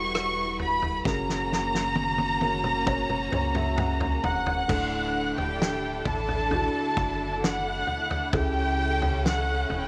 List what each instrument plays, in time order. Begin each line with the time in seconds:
Already playing: sub bass E1, string section G3 E4 F#4 B4, felt piano E4 F#4 G4 A4, violin section C#6
0.15 cross-stick
0.59 violin section B5, floor tom
0.82 floor tom
1.04 sub bass F#1, felt piano C#3 C#4 F#4 A#4, string section A#3 C#4 F#4, violin section A#5, kick, snare
1.29 snare
1.52 snare
1.75 snare
1.95 high tom
2.18 high tom
2.41 felt piano C#4 F#4 A#4, high tom
2.64 mid tom
2.86 felt piano C#4 F#4 C#5, kick, mid tom
3.10 mid tom
3.32 sub bass C#2, felt piano C#5, mid tom
3.55 felt piano E5, mid tom
3.76 felt piano F#5, mid tom
4.00 floor tom
4.23 sub bass E1, violin section F#5 F#6, felt piano A#5, floor tom
4.46 floor tom
4.68 sub bass D1, felt piano A2 D4 E4 A4, string section D3 D4 E4 A4, kick, floor tom, crash
5.37 sub bass D1, violin section G4 G5, floor tom
5.62 snare
6.05 sub bass A1, violin section A4 A5, kick, floor tom
6.28 floor tom
6.51 felt piano D4 E4 F#4, floor tom
6.97 sub bass F#1, kick
7.44 violin section F#5 F#6, snare
7.87 floor tom
8.11 floor tom
8.33 sub bass C#2, string section C#3 C#4 A4, felt piano C#3 C#4 E4 A4, violin section G4 G5, kick, floor tom
9.02 floor tom
9.26 violin section F#5 F#6, snare
9.69 sub bass E1, floor tom
9.81 violin section G5